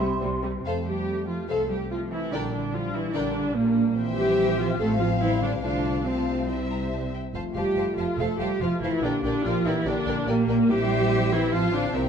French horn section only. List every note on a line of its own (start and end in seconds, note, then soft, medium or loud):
0.00 0.43 G3 medium
0.00 0.43 C4 medium
0.63 1.44 A3 soft
0.63 1.44 C4 soft
1.48 1.89 A3 soft
1.48 1.89 C4 soft
1.90 2.31 A3 soft
1.90 2.31 C4 soft
2.32 3.13 G3 soft
2.32 3.13 D4 soft
3.14 3.54 G3 soft
3.14 3.54 D4 soft
3.55 3.96 G3 medium
3.55 3.96 D4 medium
3.96 4.79 E3 medium
3.96 4.77 C4 medium
4.79 5.20 F3 medium
4.79 5.61 C4 medium
5.21 5.63 G3 soft
5.63 6.05 A3 soft
5.63 6.05 F4 soft
6.06 6.47 A3 soft
6.06 6.47 F4 soft
6.47 7.12 G3 soft
6.47 7.12 E4 soft
7.34 8.14 A3 soft
7.34 8.14 F4 soft
8.18 8.60 A3 soft
8.18 8.60 F4 soft
8.62 9.03 A3 soft
8.62 9.02 F4 soft
9.01 9.85 A#3 soft
9.01 9.85 G4 soft
9.86 10.27 A#3 medium
9.86 10.27 G4 medium
10.28 10.69 A#3 medium
10.28 10.69 G4 medium
10.70 11.50 C4 medium
10.70 11.53 E4 medium
11.51 11.93 C4 medium
11.51 11.93 F4 medium
11.94 12.09 A#3 soft
11.94 12.09 E4 soft